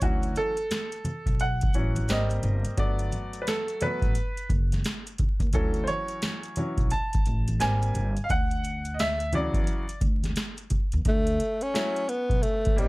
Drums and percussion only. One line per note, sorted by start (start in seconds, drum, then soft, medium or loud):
0.01 kick loud
0.01 closed hi-hat medium
0.01 maracas medium
0.22 closed hi-hat soft
0.22 maracas soft
0.35 closed hi-hat medium
0.35 high conga soft
0.35 maracas soft
0.57 closed hi-hat soft
0.57 maracas soft
0.71 snare loud
0.71 closed hi-hat medium
0.71 high conga soft
0.71 maracas medium
0.92 closed hi-hat soft
0.92 maracas soft
1.05 closed hi-hat medium
1.05 high conga medium
1.05 low conga medium
1.05 maracas medium
1.26 kick medium
1.26 closed hi-hat soft
1.26 maracas soft
1.40 closed hi-hat medium
1.40 maracas medium
1.61 kick medium
1.61 closed hi-hat medium
1.61 maracas soft
1.73 closed hi-hat medium
1.73 maracas soft
1.96 closed hi-hat medium
1.96 high conga medium
1.96 maracas soft
2.08 snare loud
2.08 closed hi-hat medium
2.08 maracas medium
2.30 closed hi-hat medium
2.30 maracas soft
2.43 closed hi-hat medium
2.43 low conga medium
2.43 maracas soft
2.65 closed hi-hat medium
2.65 maracas soft
2.78 kick loud
2.78 closed hi-hat medium
2.78 maracas medium
2.99 closed hi-hat soft
2.99 maracas soft
3.12 closed hi-hat medium
3.12 high conga soft
3.12 maracas soft
3.33 closed hi-hat soft
3.33 maracas soft
3.47 snare loud
3.47 closed hi-hat medium
3.47 high conga soft
3.47 maracas medium
3.68 closed hi-hat soft
3.68 maracas soft
3.81 closed hi-hat medium
3.81 high conga medium
3.81 low conga medium
3.81 maracas medium
4.02 kick medium
4.02 closed hi-hat soft
4.02 maracas soft
4.15 closed hi-hat medium
4.15 maracas medium
4.37 closed hi-hat soft
4.37 maracas medium
4.50 kick medium
4.50 closed hi-hat medium
4.50 maracas soft
4.72 snare soft
4.72 closed hi-hat medium
4.72 high conga medium
4.72 maracas soft
4.84 snare loud
4.84 closed hi-hat medium
4.84 maracas medium
5.06 closed hi-hat medium
5.06 maracas soft
5.18 kick medium
5.18 closed hi-hat medium
5.18 low conga medium
5.18 maracas soft
5.40 kick medium
5.40 closed hi-hat soft
5.40 maracas soft
5.53 kick loud
5.53 closed hi-hat medium
5.53 maracas medium
5.74 closed hi-hat medium
5.74 maracas soft
5.87 closed hi-hat medium
5.87 high conga soft
5.87 maracas soft
6.08 closed hi-hat soft
6.08 maracas soft
6.22 snare loud
6.22 closed hi-hat medium
6.22 high conga soft
6.22 maracas medium
6.43 closed hi-hat medium
6.43 maracas medium
6.56 closed hi-hat medium
6.56 high conga medium
6.56 low conga medium
6.56 maracas medium
6.77 kick medium
6.77 closed hi-hat soft
6.77 maracas soft
6.90 closed hi-hat medium
6.90 maracas medium
7.13 kick loud
7.13 closed hi-hat medium
7.13 maracas medium
7.26 closed hi-hat medium
7.26 maracas soft
7.48 closed hi-hat medium
7.48 high conga medium
7.48 maracas soft
7.60 snare loud
7.60 closed hi-hat medium
7.60 maracas medium
7.82 closed hi-hat medium
7.82 maracas soft
7.94 closed hi-hat medium
7.94 low conga medium
7.94 maracas soft
8.17 closed hi-hat soft
8.17 maracas soft
8.29 kick loud
8.29 closed hi-hat medium
8.29 maracas medium
8.51 closed hi-hat medium
8.51 maracas soft
8.64 closed hi-hat medium
8.64 maracas soft
8.85 closed hi-hat soft
8.85 maracas medium
8.99 snare loud
8.99 closed hi-hat medium
8.99 high conga soft
8.99 maracas medium
9.20 closed hi-hat medium
9.20 maracas medium
9.33 closed hi-hat medium
9.33 high conga medium
9.33 low conga medium
9.33 maracas medium
9.54 kick medium
9.54 closed hi-hat soft
9.54 maracas soft
9.67 closed hi-hat medium
9.67 maracas medium
9.89 closed hi-hat medium
9.89 maracas medium
10.01 kick loud
10.01 closed hi-hat medium
10.01 maracas soft
10.23 snare soft
10.23 closed hi-hat medium
10.23 high conga medium
10.23 maracas soft
10.36 snare loud
10.36 closed hi-hat medium
10.36 maracas medium
10.57 closed hi-hat medium
10.57 maracas soft
10.70 kick medium
10.70 closed hi-hat medium
10.70 low conga medium
10.70 maracas medium
10.92 closed hi-hat medium
10.92 maracas soft
11.05 kick loud
11.05 closed hi-hat medium
11.27 closed hi-hat medium
11.40 closed hi-hat medium
11.61 closed hi-hat soft
11.75 snare loud
11.75 closed hi-hat medium
11.96 closed hi-hat soft
12.09 closed hi-hat medium
12.30 kick medium
12.30 closed hi-hat soft
12.43 closed hi-hat medium
12.65 kick loud
12.65 closed hi-hat medium
12.78 closed hi-hat medium